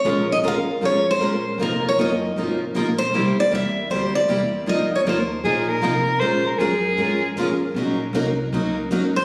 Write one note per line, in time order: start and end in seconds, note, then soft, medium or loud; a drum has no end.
0.00 0.27 C#5 medium
0.04 0.41 A#2 medium
0.04 0.25 F3 medium
0.04 0.26 G#3 medium
0.04 0.26 C#4 medium
0.04 0.26 F4 medium
0.04 0.26 A#4 medium
0.32 0.37 D#5 medium
0.42 0.65 D#2 medium
0.42 0.54 F3 medium
0.42 0.54 G#3 medium
0.42 0.54 C#4 medium
0.42 0.55 F4 medium
0.42 0.55 A#4 medium
0.48 0.81 F5 medium
0.66 muted upright bass stroke soft
0.81 1.19 F2 medium
0.81 1.03 F3 medium
0.81 1.03 G#3 medium
0.81 1.04 C#4 medium
0.81 1.03 F4 medium
0.81 1.04 A#4 medium
0.81 1.06 C#5 medium
1.11 1.63 C5 loud
1.20 1.57 A#1 medium
1.20 1.31 F3 medium
1.20 1.32 G#3 medium
1.20 1.32 C#4 medium
1.20 1.32 F4 medium
1.20 1.32 A#4 medium
1.58 1.96 F1 medium
1.58 1.81 F3 medium
1.58 1.81 A#3 medium
1.58 1.81 D#4 medium
1.58 1.81 F4 medium
1.58 1.81 A#4 medium
1.63 1.87 A#4 medium
1.89 1.99 C#5 medium
1.98 2.35 F#1 medium
1.98 2.09 F3 medium
1.98 2.09 A#3 medium
1.98 2.10 D#4 medium
1.98 2.09 F4 medium
1.98 2.10 A#4 medium
1.98 2.35 D#5 medium
2.36 2.58 G#1 medium
2.36 2.57 F3 medium
2.36 2.58 A#3 medium
2.36 2.58 D#4 medium
2.36 2.58 F4 medium
2.36 2.58 A#4 medium
2.61 muted upright bass stroke soft
2.75 3.12 A#1 medium
2.75 2.86 F3 medium
2.75 2.86 A#3 medium
2.75 2.86 D#4 medium
2.75 2.86 F4 medium
2.75 2.86 A#4 loud
2.98 3.38 C5 medium
3.13 3.35 C2 medium
3.13 3.35 C3 medium
3.13 3.35 G3 medium
3.13 3.35 A#3 medium
3.13 3.35 E4 medium
3.13 3.35 G4 medium
3.37 3.53 D5 medium
3.37 muted upright bass stroke soft
3.51 3.89 E2 medium
3.51 3.62 C3 medium
3.51 3.63 G3 medium
3.51 3.63 A#3 medium
3.51 3.63 E4 medium
3.51 3.63 G4 medium
3.51 3.90 E5 medium
3.90 4.27 D2 medium
3.90 4.11 C3 medium
3.90 4.11 G3 medium
3.90 4.11 A#3 medium
3.90 4.12 E4 medium
3.90 4.12 G4 medium
3.90 4.12 C5 medium
4.15 4.69 D5 medium
4.28 4.65 E2 medium
4.28 4.40 C3 medium
4.28 4.40 G3 medium
4.28 4.40 A#3 medium
4.28 4.40 E4 medium
4.28 4.40 G4 loud
4.67 5.04 F2 medium
4.67 4.88 F3 medium
4.67 4.89 A#3 medium
4.67 4.89 D#4 medium
4.67 4.89 F4 medium
4.67 4.89 A#4 medium
4.67 4.92 D#5 medium
4.96 5.01 C#5 medium
5.05 5.42 D#2 medium
5.05 5.17 F3 medium
5.05 5.17 A#3 medium
5.05 5.17 D#4 medium
5.05 5.17 F4 medium
5.05 5.18 A#4 medium
5.09 5.43 C5 medium
5.44 5.81 A#2 medium
5.44 5.65 F3 medium
5.44 5.66 A#3 medium
5.44 5.66 D#4 medium
5.44 5.66 F4 medium
5.44 5.70 G#4 medium
5.44 5.66 A#4 medium
5.69 6.22 A#4 medium
5.82 6.19 C3 medium
5.82 5.94 F3 medium
5.82 5.94 A#3 medium
5.82 5.94 D#4 medium
5.82 5.94 F4 medium
5.82 5.95 A#4 medium
6.20 6.43 A#2 medium
6.20 6.42 F3 medium
6.20 6.42 G#3 medium
6.20 6.42 C#4 medium
6.20 6.43 F4 medium
6.20 6.43 A#4 medium
6.20 6.46 C5 loud
6.44 6.60 A#4 medium
6.44 muted upright bass stroke soft
6.58 6.97 F#2 medium
6.58 6.71 F3 medium
6.58 6.71 G#3 medium
6.58 6.71 C#4 medium
6.58 6.71 F4 medium
6.58 7.36 G#4 medium
6.58 6.71 A#4 medium
6.97 7.35 G#2 medium
6.97 7.19 F3 medium
6.97 7.19 G#3 medium
6.97 7.19 C#4 medium
6.97 7.19 F4 medium
6.97 7.19 A#4 medium
7.36 7.73 F2 medium
7.36 7.48 F3 medium
7.36 7.48 G#3 medium
7.36 7.48 C#4 medium
7.36 7.48 F4 loud
7.36 7.48 A#4 medium
7.74 8.12 A#1 medium
7.74 7.97 F#3 medium
7.74 7.97 A#3 medium
7.74 7.97 C#4 medium
7.74 7.97 D#4 medium
7.74 7.97 F#4 medium
7.74 7.98 A#4 medium
8.13 8.51 C2 medium
8.13 8.25 F#3 medium
8.13 8.25 A#3 medium
8.13 8.25 C#4 medium
8.13 8.26 D#4 medium
8.13 8.26 F#4 medium
8.13 8.26 A#4 loud
8.52 8.90 C#2 medium
8.52 8.74 F#3 medium
8.52 8.74 A#3 medium
8.52 8.74 C#4 medium
8.52 8.75 D#4 medium
8.52 8.75 F#4 medium
8.52 8.74 A#4 medium
8.90 9.25 D#2 medium
8.90 9.02 F#3 medium
8.90 9.02 A#3 medium
8.90 9.03 C#4 medium
8.90 9.03 D#4 medium
8.90 9.03 F#4 medium
8.90 9.03 A#4 medium
9.16 9.25 C5 medium